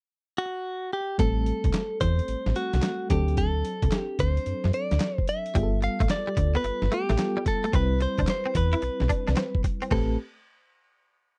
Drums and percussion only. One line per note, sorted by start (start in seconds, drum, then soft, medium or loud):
1.19 kick loud
1.19 closed hi-hat medium
1.46 closed hi-hat medium
1.64 kick medium
1.64 closed hi-hat soft
1.74 snare loud
1.74 clap medium
1.74 closed hi-hat medium
2.01 kick medium
2.01 closed hi-hat medium
2.19 closed hi-hat soft
2.28 closed hi-hat medium
2.46 snare medium
2.56 closed hi-hat medium
2.73 snare medium
2.73 closed hi-hat soft
2.82 snare loud
2.82 clap medium
2.82 closed hi-hat medium
3.10 kick medium
3.10 closed hi-hat medium
3.28 closed hi-hat soft
3.37 kick loud
3.37 closed hi-hat medium
3.65 closed hi-hat medium
3.82 kick medium
3.82 closed hi-hat soft
3.92 snare loud
3.92 clap medium
3.92 closed hi-hat medium
4.19 kick medium
4.19 closed hi-hat medium
4.37 closed hi-hat soft
4.46 closed hi-hat medium
4.64 snare medium
4.73 closed hi-hat medium
4.91 snare medium
4.91 closed hi-hat soft
5.00 snare loud
5.00 clap medium
5.00 closed hi-hat medium
5.18 kick medium
5.28 closed hi-hat medium
5.46 closed hi-hat soft
5.55 kick loud
5.55 closed hi-hat medium
5.82 closed hi-hat medium
6.00 kick medium
6.00 closed hi-hat soft
6.09 snare loud
6.09 clap medium
6.09 closed hi-hat medium
6.37 kick medium
6.37 closed hi-hat medium
6.55 closed hi-hat soft
6.64 closed hi-hat medium
6.82 snare medium
6.92 closed hi-hat medium
7.09 snare medium
7.09 closed hi-hat soft
7.18 snare loud
7.18 clap medium
7.18 closed hi-hat medium
7.46 kick medium
7.46 closed hi-hat medium
7.64 closed hi-hat soft
7.73 kick loud
7.73 closed hi-hat medium
8.00 closed hi-hat medium
8.18 kick medium
8.18 closed hi-hat soft
8.27 snare loud
8.27 clap medium
8.27 closed hi-hat medium
8.55 kick medium
8.55 closed hi-hat medium
8.73 closed hi-hat soft
8.82 closed hi-hat medium
9.00 snare medium
9.10 kick medium
9.10 closed hi-hat medium
9.28 snare medium
9.28 closed hi-hat soft
9.36 snare loud
9.36 clap medium
9.36 closed hi-hat medium
9.55 kick medium
9.64 kick medium
9.64 closed hi-hat medium
9.82 closed hi-hat soft
9.91 kick loud
9.91 crash medium